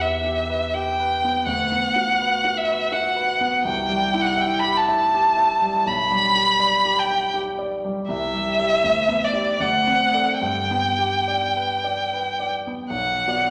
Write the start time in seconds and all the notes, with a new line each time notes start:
Already playing: E2 B3 G4
0.01 B4 E5
0.24 G4
0.50 B4
0.74 G4 G5
1.00 B4
1.24 B3
1.46 D2 F#5
1.72 B3
1.96 F#4
2.21 B4
2.44 F#4
2.58 E5
2.68 B4
2.92 F#4 F#5
3.16 B4
3.41 B3
3.64 C2 G5
3.89 G3
4.14 E4
4.21 F#5
4.37 E5
4.41 G5
4.59 G4 B5
4.77 A5
4.89 E5
5.14 G4
5.37 E5
5.62 G3
5.86 B1 B5
6.11 G3
6.35 G4
6.60 D5
6.85 G4
6.99 G5
7.11 G5
7.34 G4
7.58 D5
7.84 G3
8.08 C2 E5
8.34 G3
8.60 G4 E5
8.84 D2
9.09 B3
9.25 D5
9.33 G4 D5
9.60 D2 F#5
9.87 C4
10.13 A4 D5
10.40 G2 G5
10.71 B3
10.98 G4
11.28 D5
11.56 B4
11.84 D5
12.14 B4
12.40 D5
12.67 B3
12.90 B1 F#5
13.27 B3 F#4 D5